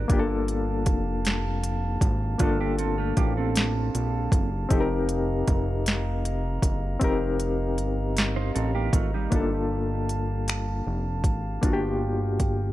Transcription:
0.08 G1 A#3 D4 F4 G4 F5 A5, kick, closed hi-hat
0.13 G4
0.19 A4
0.48 closed hi-hat
0.86 F1, kick, closed hi-hat
1.25 snare, closed hi-hat
1.64 closed hi-hat
2.01 G#1, kick, closed hi-hat
2.38 G1 A3 A#3 D4 F4, kick, closed hi-hat
2.44 A4
2.60 A#3 G4
2.79 C4 A4, closed hi-hat
2.98 A3 F4
3.17 A1 A#3 G4, kick, closed hi-hat
3.37 C4 A4
3.56 snare, closed hi-hat
3.95 A#1, closed hi-hat
4.32 F#1, kick, closed hi-hat
4.69 F1 C4 D#4 G4 D#5 F5 A#5, kick, closed hi-hat
4.74 A4
4.81 A#4
5.09 closed hi-hat
5.47 F1, kick, closed hi-hat
5.86 snare, closed hi-hat
6.25 closed hi-hat
6.62 F#1, kick, closed hi-hat
7.00 F1 C4 D#4 G4, kick, closed hi-hat
7.04 A#4
7.40 closed hi-hat
7.78 G1, closed hi-hat
8.17 snare, closed hi-hat
8.36 D#4 C5
8.55 A1 C4 A4, closed hi-hat
8.75 A#3 G4
8.93 G#1 A3 F4, kick, closed hi-hat
9.14 G3 D#4
9.30 G1 A#3 D4 F4 G4 F5 A5, kick, closed hi-hat
9.36 A4
10.09 closed hi-hat
10.48 finger snap, closed hi-hat
10.87 F1
11.24 G#1, kick, closed hi-hat
11.61 G1 A#3 D4 F4 G5, kick, closed hi-hat
11.66 F#4
11.73 G4
12.40 kick, closed hi-hat

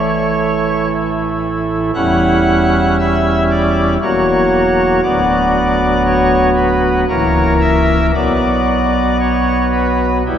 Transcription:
Already playing: A1 A2 E3 A3 E4 C#5
1.94 E1 E2 G3 C#4 E4 F#5
2.99 E5
3.51 D5
4.02 E1 E2 F#3 A#3 F#4 C#5
5.03 D1 D2 F#3 B3 F#4 D5
6.06 C#5
6.56 B4
7.08 C#1 C#2 E3 A#3 A#4 C#5
7.61 E5
8.14 B1 B2 F#3 B3 F#4 D5
9.20 C#5
9.73 B4
10.26 E1 E2 G3 B3 E4 G4

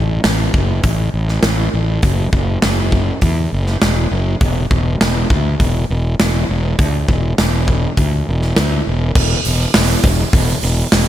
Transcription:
Already playing: A1
0.24 A1, snare, open hi-hat
0.54 F#1, kick
0.83 A1, kick, open hi-hat
1.14 A1
1.28 snare
1.43 A1, snare, open hi-hat
1.74 A1
2.02 F#1, kick, open hi-hat
2.33 F#1, kick
2.62 F#1, snare, open hi-hat
2.92 kick
3.22 E2, kick, open hi-hat
3.52 F#1
3.66 snare
3.82 E1, snare, open hi-hat
4.11 F#1
4.41 E1, kick, open hi-hat
4.71 E1, kick
5.00 E1, snare, open hi-hat
5.30 D2, kick
5.60 E1, kick, open hi-hat
5.90 E1
6.20 E1, snare, open hi-hat
6.49 E1
6.79 D2, kick, open hi-hat
7.08 E1, kick
7.38 E1, snare, open hi-hat
7.68 kick
7.97 D2, kick, open hi-hat
8.29 E1
8.42 snare
8.56 D2, snare, open hi-hat
8.87 E1
9.15 E1, kick, crash
9.45 E1, open hi-hat
9.74 E1, snare, open hi-hat
10.03 E1, kick, open hi-hat
10.33 E1, kick, open hi-hat
10.63 E1, open hi-hat
10.92 E1, snare, open hi-hat

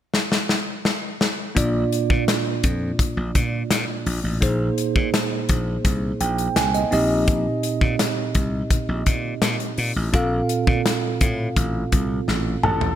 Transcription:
0.14 snare
0.32 snare
0.49 snare
0.85 snare
1.21 snare
1.55 A#1 A#2 A#3 D4 F4 D5, kick, closed hi-hat
1.93 closed hi-hat
2.10 A#2, kick
2.28 snare, closed hi-hat
2.63 F2, kick, closed hi-hat
2.99 kick, closed hi-hat
3.17 A#1
3.35 A#2, kick, closed hi-hat
3.71 A#2, snare, closed hi-hat
4.06 A#1, open hi-hat
4.24 A1
4.41 A#1 A#2 A#3 D#4 G#4 C5, kick, closed hi-hat
4.78 closed hi-hat
4.96 A#2, kick
5.14 snare, closed hi-hat
5.49 A#1, kick, closed hi-hat
5.85 C2, kick, closed hi-hat
6.20 A#1 G5, closed hi-hat
6.38 closed hi-hat
6.56 C2 G#5, snare, closed hi-hat
6.74 D#5, closed hi-hat
6.91 A#1 A#2 C4 D#4 G4 D#5, open hi-hat
7.28 kick, closed hi-hat
7.63 closed hi-hat
7.81 A#2, kick
7.99 snare, closed hi-hat
8.35 C2, kick, closed hi-hat
8.70 kick, closed hi-hat
8.89 A#1
9.06 A#2, kick, closed hi-hat
9.42 A#2, snare, closed hi-hat
9.60 closed hi-hat
9.78 A#2, open hi-hat
9.96 A1
10.13 A#1 A#2 C4 F4 A4 F5, kick, closed hi-hat
10.49 closed hi-hat
10.67 A#2, kick
10.86 snare, closed hi-hat
11.21 A2, kick, closed hi-hat
11.56 A1, kick, closed hi-hat
11.92 C2, kick, closed hi-hat
12.28 A1, snare
12.63 A1 A4, mid tom
12.81 floor tom

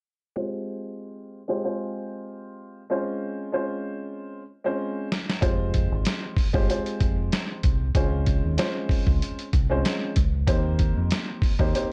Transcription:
0.36 G#3 C4 F4 G4 C5
1.48 G#3 C4 F4 G4 C5
1.64 G#3 C4 F4 G4 C5
2.90 G#3 C4 C#4 F4 C5
3.52 G#3 C4 C#4 F4 C5
4.64 G#3 C4 C#4 F4 C5
5.12 snare
5.30 snare
5.41 F1 G#3 C4 F4 G4 C5, kick, closed hi-hat
5.74 kick, closed hi-hat
5.92 G#1
6.05 snare, closed hi-hat
6.37 kick, open hi-hat
6.53 G1 G#3 C4 F4 G4 C5, kick
6.69 G#3 C4 F4 G4 C5, closed hi-hat
6.86 closed hi-hat
7.00 F1, kick, closed hi-hat
7.32 snare, closed hi-hat
7.63 C2, kick, closed hi-hat
7.95 C#2 G#3 C4 C#4 F4 C5, kick, closed hi-hat
8.26 kick, closed hi-hat
8.45 D#2
8.57 G#3 C4 C#4 F4 C5, snare, closed hi-hat
8.89 kick, open hi-hat
9.07 C#2, kick
9.22 closed hi-hat
9.39 closed hi-hat
9.53 C2, kick, closed hi-hat
9.70 G#3 C4 C#4 F4 C5
9.85 snare, closed hi-hat
10.16 C#2, kick, closed hi-hat
10.47 D#2 A#3 C4 D#4 G4 C5, kick, closed hi-hat
10.79 kick, closed hi-hat
10.97 F2
11.11 snare, closed hi-hat
11.42 kick, open hi-hat
11.59 D#2 A#3 C4 D#4 G4 C5, kick
11.74 A#3 C4 D#4 G4 C5, closed hi-hat

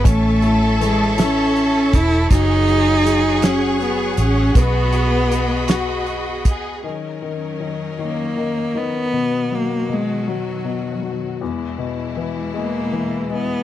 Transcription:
0.04 A1 A3 C#4 A4 C#5 E5 A5 C#6, kick, closed hi-hat
0.42 E4, closed hi-hat
0.80 E3 G#3, closed hi-hat
1.18 C#4 E4, snare, closed hi-hat
1.56 closed hi-hat
1.93 E1 E4, kick, closed hi-hat
2.30 F#1 F#3 D#4 G#4 F#5 C#6, kick, closed hi-hat
2.68 F#3, closed hi-hat
3.05 F#3, closed hi-hat
3.42 F#3 C#4, snare, closed hi-hat
3.80 B3, closed hi-hat
4.17 A1 C#4, closed hi-hat
4.55 B1 B3 F#4 D#5 B5, kick, closed hi-hat
4.93 F#4, closed hi-hat
5.30 B3 F#4, closed hi-hat
5.68 F#4, snare, closed hi-hat
6.07 closed hi-hat
6.45 C#2 G#4, kick, closed hi-hat
6.84 D#3 F#3 C#4 D#4 A#4
7.22 D#3
7.60 D#3
7.99 D#3 A#3
8.37 D#3
8.75 D#3 B3
9.13 B2 D#3 F#3 F#4
9.51 F#3 A#3
9.89 B2
9.93 G#3
10.28 F#3
10.65 B2
11.02 F#3
11.41 E2 B2 E3 G#3 E4
11.78 B2
12.17 E3
12.54 G#3 A#3
12.92 E3
13.30 G#3 B3

